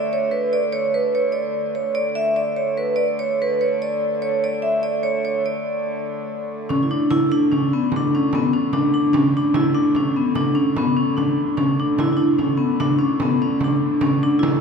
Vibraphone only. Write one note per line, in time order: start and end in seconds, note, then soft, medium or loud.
0.00 0.12 D5 medium
0.13 0.33 C#5 medium
0.32 0.55 B4 medium
0.53 0.76 D5 medium
0.72 0.94 C#5 medium
0.94 1.17 B4 medium
1.15 1.37 C#5 medium
1.32 1.77 D5 medium
1.75 1.96 C#5 medium
1.95 2.16 D5 medium
2.15 2.39 E5 medium
2.36 2.57 D5 medium
2.56 2.78 C#5 medium
2.77 3.01 B4 medium
2.96 3.18 D5 medium
3.19 3.42 C#5 medium
3.42 3.61 B4 medium
3.61 3.83 C#5 medium
3.82 4.25 D5 medium
4.22 4.42 C#5 medium
4.44 4.53 D5 medium
4.62 4.83 E5 medium
4.83 5.06 D5 medium
5.03 5.24 C#5 medium
5.25 5.45 C#5 medium
5.46 6.45 D5 medium
6.69 6.84 C#4 medium
6.83 6.89 E4 medium
6.91 7.12 D4 medium
7.11 7.30 E4 loud
7.32 7.50 D4 loud
7.52 7.70 C#4 medium
7.73 7.92 B3 medium
7.96 8.13 D4 medium
8.15 8.35 C#4 medium
8.35 8.44 B3 medium
8.53 8.74 C#4 medium
8.73 8.93 D4 medium
8.94 9.15 D4 medium
9.13 9.33 C#4 loud
9.37 9.55 D4 medium
9.56 9.65 E4 loud
9.74 9.96 D4 medium
9.96 10.17 C#4 medium
10.16 10.37 B3 medium
10.36 10.55 D4 medium
10.55 10.77 C#4 medium
10.78 10.97 B3 medium
10.97 11.18 C#4 medium
11.17 11.55 D4 medium
11.57 11.77 C#4 medium
11.80 12.00 D4 medium
12.00 12.12 E4 medium
12.13 12.19 E4 medium
12.17 12.39 D4 medium
12.39 12.58 C#4 medium
12.57 12.80 B3 medium
12.80 12.89 D4 medium
12.99 13.18 C#4 medium
13.22 13.40 B3 medium
13.42 13.60 C#4 medium
13.64 14.04 D4 medium
14.01 14.22 C#4 medium
14.23 14.41 D4 medium
14.39 14.59 E4 medium